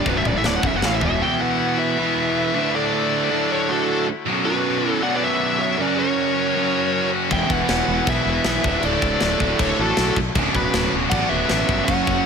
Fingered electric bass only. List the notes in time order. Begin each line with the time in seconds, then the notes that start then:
0.06 B0
0.25 C#1
0.35 A1
0.44 D1
0.63 B0
0.73 F#1
0.82 A1
1.02 E1
7.31 E1
7.50 E1
7.69 E1
7.88 E1
8.07 B1
8.26 E1
8.45 B1
8.64 D1
8.83 D1
9.02 D1
9.22 D1
9.40 D1
9.59 D1
9.79 A1
9.98 B1
10.16 B1
10.35 D1
10.55 D1
10.74 D1
10.93 D1
11.11 A1
11.30 D1
11.50 A1
11.68 G1
11.88 F#1
12.07 F#1